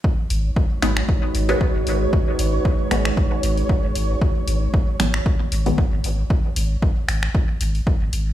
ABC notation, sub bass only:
X:1
M:4/4
L:1/16
Q:"Swing 16ths" 1/4=115
K:G#m
V:1 name="Sub bass" clef=bass
z2 G,,, z3 G,,, z3 G,,, z2 G,,, G,,, z | z2 G,,, z3 G,,, z3 G,,, z2 G,,, G,,, z | z2 G,,, z3 G,,, z3 G,,, z2 G,,, G,,, z | z2 G,,, z3 G,,, z3 G,,, z2 G,,, G,,, z |]